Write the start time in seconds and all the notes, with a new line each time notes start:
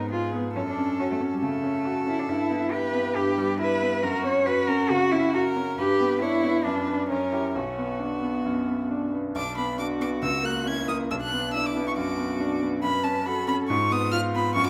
Already playing: G#2 B3 A#4
0.11 F4 G#4
0.34 B3
0.54 F#2 C#4 A4
0.67 D4
0.78 C#4
1.00 C#4 F#4
1.11 A3
1.21 C#4
1.33 G3
1.42 C#3 A3 A4
1.63 C#4
1.85 F#4
2.06 C#4 E4
2.19 D4
2.29 G2 E4
2.50 B3
2.72 E4 G4 B4
2.94 B3
3.15 G2 G4 B4
3.38 G3
3.59 E4 B4
3.81 B3
4.03 F#2 F#4 A#4
4.24 C#4 C#5
4.46 F#4 B4
4.68 C#4 A#4
4.90 C#3 F#4
5.12 C#4 E4
5.34 F#4 A#4
5.56 C#4
5.78 G2 G4 B4
6.00 B3
6.21 D4 E4 C#5
6.43 B3
6.64 F#2 D4 B4
6.87 D4 B4
7.09 F#2 C#4 A#4
7.32 E4 G4
7.54 B1 C#4 F#4
7.78 B3
8.00 B3 D4
8.22 B3
8.45 F#2
8.67 B3
8.91 D4
9.13 B3
9.35 B1 D4 D6
9.58 B3 B5
9.79 D4 F#4 D6
10.00 B3 D6
10.22 C#2 E6
10.43 A#3 F#6
10.66 C#4 E4 G#6
10.88 A#3 D#6
11.11 B1 D4 E6
11.21 F#6
11.32 B3
11.54 D4 E4 E6
11.66 D6
11.76 B3
11.88 C#6
11.97 F#2 F#4 D6
12.18 B3
12.40 D4
12.62 B3
12.83 F#2 B4 B5
13.04 C#4 A5
13.26 F#4 A4 B5
13.48 C#4 B5
13.68 G#2 F4 C#6
13.91 B3 D#6
14.12 F4 F6
14.34 B3 B5
14.55 F#2 F#4 C#6